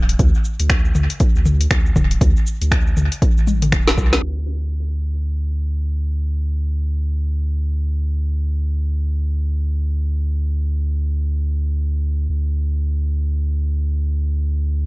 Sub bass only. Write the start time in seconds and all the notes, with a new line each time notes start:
Already playing: D1
0.19 D2
0.60 D2
0.95 D2
1.35 D2
1.71 D2
1.96 D1
2.21 D2
2.62 D2
2.97 D2
3.37 A1
3.72 D1
3.98 C2
4.23 D2
12.29 D2